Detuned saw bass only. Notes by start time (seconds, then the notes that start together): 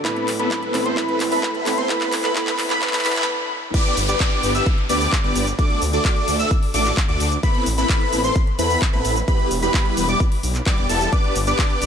0.28 A1
0.74 A1
1.20 E2
1.55 A1
2.12 E1
3.05 B1
3.97 G1
4.43 G1
4.89 D2
5.24 G1
5.36 G1
5.82 D2
6.28 D2
6.74 A1
7.09 D2
7.20 D2
7.66 A1
8.13 A1
8.59 E2
8.93 A1
9.05 A1
9.51 E1
9.97 E1
10.43 B1
10.78 E1
10.89 E1
11.36 G1
11.82 G1